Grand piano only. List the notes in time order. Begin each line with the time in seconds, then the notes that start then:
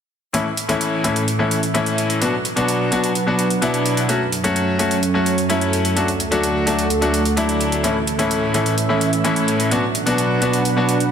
0.33 A2 E3 A3 C#4 E4
0.69 A2 E3 A3 C#4 E4
1.04 A2 E3 A3 C#4 E4
1.39 A2 E3 A3 C#4 E4
1.74 A2 E3 A3 C#4 E4
2.21 B2 F#3 B3 D4 F#4
2.56 B2 F#3 B3 D4 F#4
2.91 B2 F#3 B3 D4 F#4
3.26 B2 F#3 B3 D4 F#4
3.62 B2 F#3 B3 D4 E4
4.08 F#3 A3 C#4 F#4
4.44 F#3 A3 C#4 F#4
4.79 F#3 A3 C#4 F#4
5.14 F#3 A3 C#4 F#4
5.49 F#3 A3 C#4 E4
5.96 F#3 A3 D4 F#4
6.31 F#3 A3 D4 F#4
6.66 F#3 A3 D4 F#4
7.01 F#3 A3 D4 F#4
7.37 F#3 A3 D4 E4
7.83 A2 E3 A3 C#4 E4
8.19 A2 E3 A3 C#4 E4
8.54 A2 E3 A3 C#4 E4
8.89 A2 E3 A3 C#4 E4
9.24 A2 E3 A3 C#4 E4
9.71 B2 F#3 B3 D4 F#4
10.06 B2 F#3 B3 D4 F#4
10.41 B2 F#3 B3 D4 F#4
10.76 B2 F#3 B3 D4 F#4